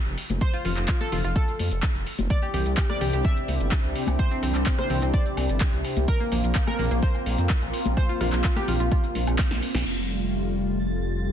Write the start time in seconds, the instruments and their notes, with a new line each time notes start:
Already playing: synth pluck G4
0.06 detuned saw bass F1, closed hi-hat
0.18 open hi-hat
0.30 detuned saw bass F1, closed hi-hat, high conga
0.41 synth pluck C5, kick, closed hi-hat
0.53 synth pluck F4, closed hi-hat
0.65 detuned saw bass F1, synth pluck F4, open hi-hat, low conga
0.77 detuned saw bass F1, clap, closed hi-hat
0.88 synth pluck F4, kick, clap, closed hi-hat
1.01 synth pluck A4, closed hi-hat, high conga
1.12 detuned saw bass F1, synth pluck F4, open hi-hat, low conga
1.24 detuned saw bass F1, synth pluck F4, closed hi-hat
1.36 synth pluck A4, kick, closed hi-hat
1.48 closed hi-hat
1.59 detuned saw bass F2, open hi-hat, high conga
1.71 detuned saw bass F1, closed hi-hat
1.83 kick, clap, open hi-hat
1.95 detuned saw bass F1, closed hi-hat
2.07 open hi-hat
2.19 detuned saw bass F1, closed hi-hat, high conga
2.30 analog synth pad C3 C4 D4 E4 G4, synth pluck D5, kick, closed hi-hat
2.42 synth pluck G4, closed hi-hat, high woodblock
2.54 detuned saw bass C2, synth pluck G4, open hi-hat, low conga
2.66 detuned saw bass C2, closed hi-hat
2.77 synth pluck G4, kick, clap, closed hi-hat, high woodblock
2.90 synth pluck D5, cross-stick, high conga
3.01 detuned saw bass C2, synth pluck G4, open hi-hat, low conga
3.13 detuned saw bass C2, synth pluck G4, closed hi-hat
3.25 synth pluck E5, kick, closed hi-hat, high woodblock
3.37 closed hi-hat
3.48 detuned saw bass C2, open hi-hat, high conga
3.60 detuned saw bass G1, closed hi-hat
3.72 kick, clap, closed hi-hat, high woodblock
3.84 detuned saw bass C2, closed hi-hat
3.96 open hi-hat
4.07 detuned saw bass C2, closed hi-hat, high conga, high woodblock
4.19 synth pluck C5, kick, closed hi-hat
4.31 synth pluck C4, closed hi-hat
4.43 detuned saw bass C2, synth pluck C4, open hi-hat, low conga
4.55 detuned saw bass C2, clap, closed hi-hat, high woodblock
4.66 synth pluck C4, kick, clap, closed hi-hat
4.79 synth pluck C5, cross-stick, closed hi-hat, high conga
4.90 detuned saw bass C2, synth pluck C4, open hi-hat, low conga
5.02 detuned saw bass C2, synth pluck C4, closed hi-hat, high woodblock
5.14 synth pluck D5, kick, closed hi-hat
5.26 closed hi-hat
5.37 detuned saw bass C2, open hi-hat, high conga, high woodblock
5.49 detuned saw bass G1, closed hi-hat
5.61 kick, clap, open hi-hat
5.73 detuned saw bass C2, closed hi-hat
5.84 open hi-hat, high woodblock
5.97 detuned saw bass C2, closed hi-hat, high conga
6.08 analog synth pad A#3 C4 F4, synth pluck A#4, kick, closed hi-hat
6.20 synth pluck A#3, closed hi-hat
6.32 detuned saw bass A#1, synth pluck A#3, open hi-hat, low conga, high woodblock
6.44 detuned saw bass A#1, closed hi-hat
6.55 synth pluck A#3, kick, clap, closed hi-hat
6.67 synth pluck A#4, cross-stick, high conga, high woodblock
6.79 detuned saw bass A#1, synth pluck A#3, open hi-hat, low conga
6.91 detuned saw bass A#1, synth pluck A#3, closed hi-hat
7.03 synth pluck C5, kick, closed hi-hat
7.14 closed hi-hat, high woodblock
7.26 detuned saw bass A#1, open hi-hat, high conga
7.38 detuned saw bass F2, closed hi-hat
7.50 kick, clap, closed hi-hat
7.62 detuned saw bass A#1, closed hi-hat, high woodblock
7.73 open hi-hat
7.85 detuned saw bass A#1, closed hi-hat, high conga
7.97 synth pluck C5, kick, closed hi-hat, high woodblock
8.09 synth pluck F4, closed hi-hat
8.21 detuned saw bass A#1, synth pluck F4, cross-stick, open hi-hat, low conga
8.33 detuned saw bass A#1, clap, closed hi-hat
8.44 synth pluck F4, kick, clap, closed hi-hat, high woodblock
8.56 synth pluck G4, cross-stick, closed hi-hat, high conga
8.68 detuned saw bass A#1, synth pluck F4, open hi-hat, low conga
8.80 detuned saw bass A#1, synth pluck F4, closed hi-hat
8.92 synth pluck F4, kick, closed hi-hat, high woodblock
9.04 closed hi-hat
9.15 detuned saw bass A#1, open hi-hat, high conga
9.27 detuned saw bass A#1, closed hi-hat, high woodblock
9.39 kick, snare, clap, open hi-hat
9.51 detuned saw bass A#1, snare, closed hi-hat
9.62 open hi-hat
9.75 detuned saw bass A#1, snare, closed hi-hat, high conga, high woodblock
9.86 detuned saw bass F1, analog synth pad G3 A3 F4, synth texture A6, crash